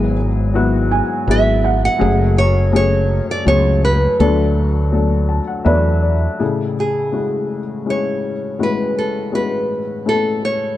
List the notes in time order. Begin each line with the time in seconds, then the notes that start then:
Already playing: G#1 G#2 F#3 B3 E4 G#4 A4 C#5 G#5
0.54 F#3 B3 E4 F#4
0.91 G#5
1.27 G#1 F#3 B3 E4 G#4 E5
1.64 F#5
1.85 F#5
1.99 F#1 F#2 F#3 A3 C#4 G#4
2.38 C#5
2.72 F#3 A3 C#4 G#4
2.76 C#5
3.31 D5
3.45 C#2 F#3 A3 C#4 G#4 C#5
3.85 B4
4.19 D2 D3 F#3 A3 D4 A4
4.92 F#3 A3 D4 A4
5.29 A5
5.47 F#5
5.65 E2 F#3 A3 D4 B4 D5 E5
6.02 D5
6.39 A1 A2 C#3 E4 G#4 A4
6.80 G#4
7.12 G#3 C#4 E4 F#4
7.86 G#3 C#4 E4 G#4
7.90 C#5
8.59 A1 A2 G#3 C#4 E4 F#4
8.63 B4
8.99 A4
9.32 G#3 C#4 E4 F#4 B4
10.05 A3 C#4 E4 A4
10.45 C#5